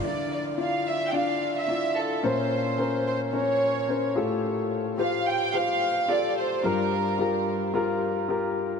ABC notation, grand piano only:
X:1
M:4/4
L:1/8
Q:"Swing 16ths" 1/4=109
K:Dm
V:1 name="Grand piano"
[EFd]2 [EFd]2 [DFd]2 [EFd]2 | [_DBc]2 [DBc]2 [DB_d]2 [DBc] [FGA]- | [FGA]2 [FGc]2 [FGc]2 [FGA]2 | [FGB]2 [FGB]2 [FGB]2 [FGB]2 |]
V:2 name="Grand piano" clef=bass
D,3 z4 z | B,,3 z4 A,,- | A,,2 z6 | G,,3 z4 z |]